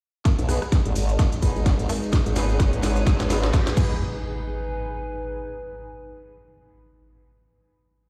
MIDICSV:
0, 0, Header, 1, 9, 480
1, 0, Start_track
1, 0, Key_signature, 5, "minor"
1, 0, Tempo, 468750
1, 260, Time_signature, 4, 2, 24, 8
1, 8287, End_track
2, 0, Start_track
2, 0, Title_t, "Analog synth pad"
2, 0, Program_c, 0, 89
2, 259, Note_on_c, 0, 56, 77
2, 259, Note_on_c, 0, 71, 72
2, 260, Note_on_c, 0, 68, 73
2, 260, Note_on_c, 0, 75, 83
2, 2161, Note_off_c, 0, 75, 0
2, 2180, Note_on_c, 0, 73, 88
2, 3823, Note_off_c, 0, 56, 0
2, 3823, Note_off_c, 0, 71, 0
2, 3824, Note_off_c, 0, 68, 0
2, 3843, Note_off_c, 0, 73, 0
2, 3861, Note_on_c, 0, 56, 74
2, 3861, Note_on_c, 0, 71, 68
2, 3861, Note_on_c, 0, 75, 82
2, 3862, Note_on_c, 0, 68, 69
2, 4084, Note_off_c, 0, 56, 0
2, 4084, Note_off_c, 0, 68, 0
2, 4084, Note_off_c, 0, 71, 0
2, 4084, Note_off_c, 0, 75, 0
2, 8287, End_track
3, 0, Start_track
3, 0, Title_t, "Ambient pad"
3, 0, Program_c, 1, 92
3, 258, Note_on_c, 1, 63, 71
3, 875, Note_on_c, 1, 68, 77
3, 1417, Note_on_c, 1, 71, 84
3, 1419, Note_on_c, 1, 80, 76
3, 3849, Note_off_c, 1, 63, 0
3, 3860, Note_off_c, 1, 68, 0
3, 3860, Note_off_c, 1, 71, 0
3, 3860, Note_off_c, 1, 80, 0
3, 3861, Note_on_c, 1, 63, 76
3, 3945, Note_on_c, 1, 68, 75
3, 4259, Note_on_c, 1, 71, 76
3, 4320, Note_on_c, 1, 80, 76
3, 5740, Note_off_c, 1, 63, 0
3, 5741, Note_off_c, 1, 68, 0
3, 5980, Note_off_c, 1, 71, 0
3, 5980, Note_off_c, 1, 80, 0
3, 8287, End_track
4, 0, Start_track
4, 0, Title_t, "Horn section"
4, 0, Program_c, 2, 61
4, 499, Note_on_c, 2, 59, 77
4, 499, Note_on_c, 2, 63, 69
4, 499, Note_on_c, 2, 68, 69
4, 499, Note_on_c, 2, 71, 84
4, 632, Note_off_c, 2, 59, 0
4, 632, Note_off_c, 2, 68, 0
4, 632, Note_off_c, 2, 71, 0
4, 633, Note_off_c, 2, 63, 0
4, 1460, Note_on_c, 2, 59, 76
4, 1460, Note_on_c, 2, 63, 71
4, 1460, Note_on_c, 2, 68, 70
4, 1460, Note_on_c, 2, 71, 84
4, 1654, Note_off_c, 2, 59, 0
4, 1654, Note_off_c, 2, 63, 0
4, 1654, Note_off_c, 2, 68, 0
4, 1654, Note_off_c, 2, 71, 0
4, 2420, Note_on_c, 2, 59, 79
4, 2420, Note_on_c, 2, 63, 72
4, 2420, Note_on_c, 2, 68, 74
4, 2420, Note_on_c, 2, 71, 88
4, 2553, Note_off_c, 2, 59, 0
4, 2553, Note_off_c, 2, 63, 0
4, 2553, Note_off_c, 2, 68, 0
4, 2553, Note_off_c, 2, 71, 0
4, 3380, Note_on_c, 2, 59, 81
4, 3380, Note_on_c, 2, 63, 72
4, 3380, Note_on_c, 2, 68, 76
4, 3380, Note_on_c, 2, 71, 90
4, 3574, Note_off_c, 2, 59, 0
4, 3574, Note_off_c, 2, 63, 0
4, 3574, Note_off_c, 2, 68, 0
4, 3574, Note_off_c, 2, 71, 0
4, 3859, Note_on_c, 2, 59, 90
4, 3859, Note_on_c, 2, 63, 81
4, 3859, Note_on_c, 2, 68, 80
4, 3859, Note_on_c, 2, 71, 94
4, 4044, Note_off_c, 2, 59, 0
4, 4044, Note_off_c, 2, 63, 0
4, 4044, Note_off_c, 2, 68, 0
4, 4044, Note_off_c, 2, 71, 0
4, 8287, End_track
5, 0, Start_track
5, 0, Title_t, "FM bass"
5, 0, Program_c, 3, 39
5, 259, Note_on_c, 3, 32, 92
5, 374, Note_off_c, 3, 32, 0
5, 1219, Note_on_c, 3, 32, 97
5, 1443, Note_off_c, 3, 32, 0
5, 1939, Note_on_c, 3, 32, 97
5, 2295, Note_off_c, 3, 32, 0
5, 3619, Note_on_c, 3, 32, 100
5, 3843, Note_off_c, 3, 32, 0
5, 3859, Note_on_c, 3, 32, 99
5, 4083, Note_off_c, 3, 32, 0
5, 8287, End_track
6, 0, Start_track
6, 0, Title_t, "Wobble bass"
6, 0, Program_c, 4, 39
6, 396, Note_on_c, 4, 35, 93
6, 614, Note_off_c, 4, 35, 0
6, 877, Note_on_c, 4, 32, 95
6, 964, Note_off_c, 4, 32, 0
6, 980, Note_on_c, 4, 32, 96
6, 1204, Note_off_c, 4, 32, 0
6, 1459, Note_on_c, 4, 32, 94
6, 1574, Note_off_c, 4, 32, 0
6, 1598, Note_on_c, 4, 32, 96
6, 1815, Note_off_c, 4, 32, 0
6, 1838, Note_on_c, 4, 32, 95
6, 1924, Note_off_c, 4, 32, 0
6, 2318, Note_on_c, 4, 32, 97
6, 2775, Note_off_c, 4, 32, 0
6, 2796, Note_on_c, 4, 32, 96
6, 2883, Note_off_c, 4, 32, 0
6, 2900, Note_on_c, 4, 32, 96
6, 3123, Note_off_c, 4, 32, 0
6, 3139, Note_on_c, 4, 32, 101
6, 3603, Note_off_c, 4, 32, 0
6, 8287, End_track
7, 0, Start_track
7, 0, Title_t, "Impact"
7, 0, Program_c, 5, 103
7, 3860, Note_on_c, 5, 60, 66
7, 5780, Note_off_c, 5, 60, 0
7, 8287, End_track
8, 0, Start_track
8, 0, Title_t, "Riser"
8, 0, Program_c, 6, 103
8, 259, Note_on_c, 6, 60, 80
8, 3860, Note_off_c, 6, 60, 0
8, 8287, End_track
9, 0, Start_track
9, 0, Title_t, "Drums"
9, 258, Note_on_c, 9, 38, 44
9, 258, Note_on_c, 9, 42, 77
9, 259, Note_on_c, 9, 36, 115
9, 264, Note_on_c, 9, 70, 49
9, 360, Note_off_c, 9, 38, 0
9, 360, Note_off_c, 9, 42, 0
9, 361, Note_off_c, 9, 36, 0
9, 366, Note_off_c, 9, 70, 0
9, 395, Note_on_c, 9, 42, 52
9, 397, Note_on_c, 9, 70, 37
9, 497, Note_off_c, 9, 42, 0
9, 498, Note_on_c, 9, 37, 72
9, 498, Note_on_c, 9, 46, 99
9, 499, Note_off_c, 9, 70, 0
9, 506, Note_on_c, 9, 70, 92
9, 600, Note_off_c, 9, 37, 0
9, 600, Note_off_c, 9, 46, 0
9, 608, Note_off_c, 9, 70, 0
9, 633, Note_on_c, 9, 70, 34
9, 635, Note_on_c, 9, 37, 74
9, 736, Note_off_c, 9, 70, 0
9, 737, Note_off_c, 9, 37, 0
9, 738, Note_on_c, 9, 38, 51
9, 738, Note_on_c, 9, 42, 81
9, 739, Note_on_c, 9, 36, 110
9, 741, Note_on_c, 9, 70, 48
9, 841, Note_off_c, 9, 36, 0
9, 841, Note_off_c, 9, 38, 0
9, 841, Note_off_c, 9, 42, 0
9, 843, Note_off_c, 9, 70, 0
9, 875, Note_on_c, 9, 42, 53
9, 978, Note_off_c, 9, 42, 0
9, 978, Note_on_c, 9, 46, 99
9, 980, Note_on_c, 9, 70, 89
9, 1080, Note_off_c, 9, 46, 0
9, 1082, Note_off_c, 9, 70, 0
9, 1113, Note_on_c, 9, 70, 39
9, 1115, Note_on_c, 9, 42, 37
9, 1215, Note_off_c, 9, 70, 0
9, 1218, Note_off_c, 9, 42, 0
9, 1218, Note_on_c, 9, 38, 56
9, 1218, Note_on_c, 9, 42, 80
9, 1219, Note_on_c, 9, 36, 118
9, 1224, Note_on_c, 9, 70, 46
9, 1320, Note_off_c, 9, 38, 0
9, 1320, Note_off_c, 9, 42, 0
9, 1321, Note_off_c, 9, 36, 0
9, 1326, Note_off_c, 9, 70, 0
9, 1353, Note_on_c, 9, 70, 37
9, 1355, Note_on_c, 9, 42, 54
9, 1456, Note_off_c, 9, 70, 0
9, 1456, Note_on_c, 9, 70, 84
9, 1458, Note_off_c, 9, 42, 0
9, 1459, Note_on_c, 9, 36, 60
9, 1459, Note_on_c, 9, 46, 100
9, 1559, Note_off_c, 9, 70, 0
9, 1561, Note_off_c, 9, 36, 0
9, 1561, Note_off_c, 9, 46, 0
9, 1597, Note_on_c, 9, 70, 37
9, 1698, Note_off_c, 9, 70, 0
9, 1698, Note_on_c, 9, 70, 54
9, 1699, Note_on_c, 9, 36, 111
9, 1699, Note_on_c, 9, 38, 62
9, 1699, Note_on_c, 9, 42, 79
9, 1800, Note_off_c, 9, 70, 0
9, 1801, Note_off_c, 9, 36, 0
9, 1801, Note_off_c, 9, 38, 0
9, 1801, Note_off_c, 9, 42, 0
9, 1835, Note_on_c, 9, 70, 35
9, 1836, Note_on_c, 9, 42, 54
9, 1936, Note_off_c, 9, 70, 0
9, 1936, Note_on_c, 9, 70, 95
9, 1939, Note_off_c, 9, 42, 0
9, 1939, Note_on_c, 9, 46, 104
9, 2039, Note_off_c, 9, 70, 0
9, 2041, Note_off_c, 9, 46, 0
9, 2077, Note_on_c, 9, 70, 37
9, 2172, Note_off_c, 9, 70, 0
9, 2172, Note_on_c, 9, 70, 50
9, 2179, Note_on_c, 9, 36, 120
9, 2180, Note_on_c, 9, 38, 71
9, 2180, Note_on_c, 9, 42, 78
9, 2275, Note_off_c, 9, 70, 0
9, 2281, Note_off_c, 9, 36, 0
9, 2282, Note_off_c, 9, 38, 0
9, 2282, Note_off_c, 9, 42, 0
9, 2312, Note_on_c, 9, 70, 38
9, 2316, Note_on_c, 9, 42, 52
9, 2414, Note_off_c, 9, 70, 0
9, 2414, Note_on_c, 9, 70, 96
9, 2419, Note_off_c, 9, 42, 0
9, 2419, Note_on_c, 9, 38, 75
9, 2419, Note_on_c, 9, 46, 104
9, 2516, Note_off_c, 9, 70, 0
9, 2521, Note_off_c, 9, 38, 0
9, 2521, Note_off_c, 9, 46, 0
9, 2549, Note_on_c, 9, 70, 42
9, 2651, Note_off_c, 9, 70, 0
9, 2659, Note_on_c, 9, 36, 125
9, 2660, Note_on_c, 9, 38, 82
9, 2660, Note_on_c, 9, 42, 80
9, 2661, Note_on_c, 9, 70, 52
9, 2761, Note_off_c, 9, 36, 0
9, 2762, Note_off_c, 9, 38, 0
9, 2762, Note_off_c, 9, 42, 0
9, 2763, Note_off_c, 9, 70, 0
9, 2796, Note_on_c, 9, 42, 55
9, 2897, Note_on_c, 9, 70, 101
9, 2898, Note_off_c, 9, 42, 0
9, 2900, Note_on_c, 9, 38, 83
9, 2900, Note_on_c, 9, 46, 104
9, 2999, Note_off_c, 9, 70, 0
9, 3002, Note_off_c, 9, 38, 0
9, 3002, Note_off_c, 9, 46, 0
9, 3028, Note_on_c, 9, 70, 38
9, 3037, Note_on_c, 9, 42, 38
9, 3130, Note_off_c, 9, 70, 0
9, 3139, Note_off_c, 9, 42, 0
9, 3139, Note_on_c, 9, 36, 126
9, 3140, Note_on_c, 9, 38, 89
9, 3140, Note_on_c, 9, 42, 79
9, 3141, Note_on_c, 9, 70, 51
9, 3241, Note_off_c, 9, 36, 0
9, 3242, Note_off_c, 9, 38, 0
9, 3242, Note_off_c, 9, 42, 0
9, 3244, Note_off_c, 9, 70, 0
9, 3271, Note_on_c, 9, 70, 41
9, 3277, Note_on_c, 9, 38, 85
9, 3277, Note_on_c, 9, 42, 54
9, 3373, Note_off_c, 9, 70, 0
9, 3379, Note_off_c, 9, 38, 0
9, 3379, Note_off_c, 9, 42, 0
9, 3380, Note_on_c, 9, 38, 100
9, 3380, Note_on_c, 9, 46, 114
9, 3380, Note_on_c, 9, 70, 108
9, 3483, Note_off_c, 9, 38, 0
9, 3483, Note_off_c, 9, 46, 0
9, 3483, Note_off_c, 9, 70, 0
9, 3512, Note_on_c, 9, 70, 42
9, 3518, Note_on_c, 9, 38, 89
9, 3614, Note_off_c, 9, 70, 0
9, 3619, Note_on_c, 9, 36, 123
9, 3619, Note_on_c, 9, 70, 54
9, 3620, Note_off_c, 9, 38, 0
9, 3620, Note_on_c, 9, 38, 97
9, 3620, Note_on_c, 9, 42, 78
9, 3721, Note_off_c, 9, 36, 0
9, 3722, Note_off_c, 9, 70, 0
9, 3723, Note_off_c, 9, 38, 0
9, 3723, Note_off_c, 9, 42, 0
9, 3756, Note_on_c, 9, 70, 39
9, 3758, Note_on_c, 9, 38, 92
9, 3758, Note_on_c, 9, 42, 54
9, 3858, Note_off_c, 9, 70, 0
9, 3858, Note_on_c, 9, 70, 100
9, 3859, Note_on_c, 9, 36, 116
9, 3860, Note_off_c, 9, 38, 0
9, 3860, Note_off_c, 9, 42, 0
9, 3861, Note_on_c, 9, 49, 87
9, 3961, Note_off_c, 9, 36, 0
9, 3961, Note_off_c, 9, 70, 0
9, 3963, Note_off_c, 9, 49, 0
9, 3995, Note_on_c, 9, 70, 42
9, 4097, Note_off_c, 9, 70, 0
9, 8287, End_track
0, 0, End_of_file